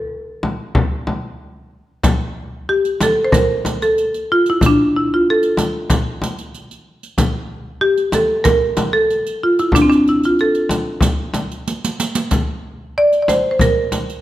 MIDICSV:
0, 0, Header, 1, 4, 480
1, 0, Start_track
1, 0, Tempo, 641711
1, 1527, Time_signature, 4, 2, 24, 8
1, 10632, End_track
2, 0, Start_track
2, 0, Title_t, "Marimba"
2, 0, Program_c, 0, 12
2, 0, Note_on_c, 0, 69, 83
2, 1027, Note_off_c, 0, 69, 0
2, 2013, Note_on_c, 0, 67, 82
2, 2234, Note_off_c, 0, 67, 0
2, 2264, Note_on_c, 0, 69, 82
2, 2427, Note_on_c, 0, 72, 72
2, 2449, Note_off_c, 0, 69, 0
2, 2483, Note_off_c, 0, 72, 0
2, 2489, Note_on_c, 0, 70, 95
2, 2823, Note_off_c, 0, 70, 0
2, 2861, Note_on_c, 0, 69, 85
2, 3224, Note_off_c, 0, 69, 0
2, 3230, Note_on_c, 0, 65, 80
2, 3342, Note_off_c, 0, 65, 0
2, 3364, Note_on_c, 0, 64, 76
2, 3469, Note_off_c, 0, 64, 0
2, 3488, Note_on_c, 0, 62, 86
2, 3692, Note_off_c, 0, 62, 0
2, 3713, Note_on_c, 0, 64, 74
2, 3823, Note_off_c, 0, 64, 0
2, 3844, Note_on_c, 0, 65, 76
2, 3938, Note_off_c, 0, 65, 0
2, 3966, Note_on_c, 0, 69, 84
2, 4876, Note_off_c, 0, 69, 0
2, 5844, Note_on_c, 0, 67, 94
2, 6091, Note_on_c, 0, 69, 84
2, 6092, Note_off_c, 0, 67, 0
2, 6314, Note_on_c, 0, 70, 112
2, 6336, Note_off_c, 0, 69, 0
2, 6681, Note_on_c, 0, 69, 91
2, 6691, Note_off_c, 0, 70, 0
2, 7054, Note_off_c, 0, 69, 0
2, 7057, Note_on_c, 0, 65, 80
2, 7175, Note_off_c, 0, 65, 0
2, 7177, Note_on_c, 0, 64, 76
2, 7293, Note_on_c, 0, 62, 92
2, 7295, Note_off_c, 0, 64, 0
2, 7343, Note_off_c, 0, 62, 0
2, 7343, Note_on_c, 0, 60, 67
2, 7393, Note_off_c, 0, 60, 0
2, 7403, Note_on_c, 0, 62, 91
2, 7536, Note_off_c, 0, 62, 0
2, 7546, Note_on_c, 0, 64, 74
2, 7659, Note_off_c, 0, 64, 0
2, 7670, Note_on_c, 0, 65, 74
2, 7781, Note_off_c, 0, 65, 0
2, 7785, Note_on_c, 0, 69, 81
2, 8706, Note_off_c, 0, 69, 0
2, 9707, Note_on_c, 0, 74, 95
2, 9883, Note_off_c, 0, 74, 0
2, 9892, Note_on_c, 0, 74, 66
2, 9936, Note_off_c, 0, 74, 0
2, 9940, Note_on_c, 0, 72, 81
2, 10098, Note_off_c, 0, 72, 0
2, 10107, Note_on_c, 0, 72, 61
2, 10163, Note_off_c, 0, 72, 0
2, 10184, Note_on_c, 0, 70, 87
2, 10632, Note_off_c, 0, 70, 0
2, 10632, End_track
3, 0, Start_track
3, 0, Title_t, "Frame drum"
3, 322, Note_on_c, 9, 64, 64
3, 397, Note_off_c, 9, 64, 0
3, 560, Note_on_c, 9, 64, 84
3, 635, Note_off_c, 9, 64, 0
3, 801, Note_on_c, 9, 64, 63
3, 876, Note_off_c, 9, 64, 0
3, 1522, Note_on_c, 9, 64, 91
3, 1597, Note_off_c, 9, 64, 0
3, 2248, Note_on_c, 9, 64, 76
3, 2323, Note_off_c, 9, 64, 0
3, 2486, Note_on_c, 9, 64, 87
3, 2560, Note_off_c, 9, 64, 0
3, 2730, Note_on_c, 9, 64, 67
3, 2804, Note_off_c, 9, 64, 0
3, 3449, Note_on_c, 9, 64, 85
3, 3524, Note_off_c, 9, 64, 0
3, 4169, Note_on_c, 9, 64, 67
3, 4244, Note_off_c, 9, 64, 0
3, 4411, Note_on_c, 9, 64, 81
3, 4485, Note_off_c, 9, 64, 0
3, 4650, Note_on_c, 9, 64, 64
3, 4725, Note_off_c, 9, 64, 0
3, 5369, Note_on_c, 9, 64, 80
3, 5444, Note_off_c, 9, 64, 0
3, 6076, Note_on_c, 9, 64, 71
3, 6151, Note_off_c, 9, 64, 0
3, 6322, Note_on_c, 9, 64, 82
3, 6397, Note_off_c, 9, 64, 0
3, 6560, Note_on_c, 9, 64, 73
3, 6635, Note_off_c, 9, 64, 0
3, 7270, Note_on_c, 9, 64, 80
3, 7345, Note_off_c, 9, 64, 0
3, 7999, Note_on_c, 9, 64, 70
3, 8074, Note_off_c, 9, 64, 0
3, 8232, Note_on_c, 9, 64, 79
3, 8307, Note_off_c, 9, 64, 0
3, 8479, Note_on_c, 9, 64, 65
3, 8554, Note_off_c, 9, 64, 0
3, 9210, Note_on_c, 9, 64, 69
3, 9284, Note_off_c, 9, 64, 0
3, 9935, Note_on_c, 9, 64, 67
3, 10010, Note_off_c, 9, 64, 0
3, 10168, Note_on_c, 9, 64, 76
3, 10243, Note_off_c, 9, 64, 0
3, 10412, Note_on_c, 9, 64, 64
3, 10487, Note_off_c, 9, 64, 0
3, 10632, End_track
4, 0, Start_track
4, 0, Title_t, "Riq"
4, 1526, Note_on_c, 9, 54, 60
4, 1601, Note_off_c, 9, 54, 0
4, 2132, Note_on_c, 9, 54, 17
4, 2207, Note_off_c, 9, 54, 0
4, 2253, Note_on_c, 9, 54, 52
4, 2328, Note_off_c, 9, 54, 0
4, 2499, Note_on_c, 9, 54, 58
4, 2574, Note_off_c, 9, 54, 0
4, 2737, Note_on_c, 9, 54, 48
4, 2811, Note_off_c, 9, 54, 0
4, 2858, Note_on_c, 9, 54, 20
4, 2932, Note_off_c, 9, 54, 0
4, 2977, Note_on_c, 9, 54, 18
4, 3052, Note_off_c, 9, 54, 0
4, 3100, Note_on_c, 9, 54, 21
4, 3175, Note_off_c, 9, 54, 0
4, 3336, Note_on_c, 9, 54, 19
4, 3411, Note_off_c, 9, 54, 0
4, 3458, Note_on_c, 9, 54, 58
4, 3533, Note_off_c, 9, 54, 0
4, 4061, Note_on_c, 9, 54, 18
4, 4136, Note_off_c, 9, 54, 0
4, 4178, Note_on_c, 9, 54, 47
4, 4252, Note_off_c, 9, 54, 0
4, 4414, Note_on_c, 9, 54, 55
4, 4489, Note_off_c, 9, 54, 0
4, 4664, Note_on_c, 9, 54, 45
4, 4739, Note_off_c, 9, 54, 0
4, 4776, Note_on_c, 9, 54, 18
4, 4851, Note_off_c, 9, 54, 0
4, 4896, Note_on_c, 9, 54, 17
4, 4970, Note_off_c, 9, 54, 0
4, 5021, Note_on_c, 9, 54, 19
4, 5095, Note_off_c, 9, 54, 0
4, 5260, Note_on_c, 9, 54, 17
4, 5335, Note_off_c, 9, 54, 0
4, 5373, Note_on_c, 9, 54, 60
4, 5448, Note_off_c, 9, 54, 0
4, 5966, Note_on_c, 9, 54, 18
4, 6041, Note_off_c, 9, 54, 0
4, 6081, Note_on_c, 9, 54, 49
4, 6156, Note_off_c, 9, 54, 0
4, 6320, Note_on_c, 9, 54, 58
4, 6394, Note_off_c, 9, 54, 0
4, 6558, Note_on_c, 9, 54, 40
4, 6633, Note_off_c, 9, 54, 0
4, 6810, Note_on_c, 9, 54, 19
4, 6885, Note_off_c, 9, 54, 0
4, 6931, Note_on_c, 9, 54, 18
4, 7005, Note_off_c, 9, 54, 0
4, 7173, Note_on_c, 9, 54, 20
4, 7247, Note_off_c, 9, 54, 0
4, 7298, Note_on_c, 9, 54, 65
4, 7373, Note_off_c, 9, 54, 0
4, 7419, Note_on_c, 9, 54, 19
4, 7494, Note_off_c, 9, 54, 0
4, 7537, Note_on_c, 9, 54, 17
4, 7611, Note_off_c, 9, 54, 0
4, 7655, Note_on_c, 9, 54, 18
4, 7730, Note_off_c, 9, 54, 0
4, 7773, Note_on_c, 9, 54, 17
4, 7848, Note_off_c, 9, 54, 0
4, 7889, Note_on_c, 9, 54, 16
4, 7964, Note_off_c, 9, 54, 0
4, 8009, Note_on_c, 9, 54, 47
4, 8083, Note_off_c, 9, 54, 0
4, 8245, Note_on_c, 9, 54, 62
4, 8319, Note_off_c, 9, 54, 0
4, 8484, Note_on_c, 9, 54, 44
4, 8559, Note_off_c, 9, 54, 0
4, 8614, Note_on_c, 9, 54, 17
4, 8688, Note_off_c, 9, 54, 0
4, 8733, Note_on_c, 9, 54, 50
4, 8808, Note_off_c, 9, 54, 0
4, 8860, Note_on_c, 9, 54, 67
4, 8935, Note_off_c, 9, 54, 0
4, 8975, Note_on_c, 9, 54, 79
4, 9049, Note_off_c, 9, 54, 0
4, 9090, Note_on_c, 9, 54, 81
4, 9165, Note_off_c, 9, 54, 0
4, 9207, Note_on_c, 9, 54, 59
4, 9282, Note_off_c, 9, 54, 0
4, 9818, Note_on_c, 9, 54, 15
4, 9893, Note_off_c, 9, 54, 0
4, 9942, Note_on_c, 9, 54, 44
4, 10017, Note_off_c, 9, 54, 0
4, 10180, Note_on_c, 9, 54, 53
4, 10255, Note_off_c, 9, 54, 0
4, 10414, Note_on_c, 9, 54, 44
4, 10488, Note_off_c, 9, 54, 0
4, 10544, Note_on_c, 9, 54, 16
4, 10618, Note_off_c, 9, 54, 0
4, 10632, End_track
0, 0, End_of_file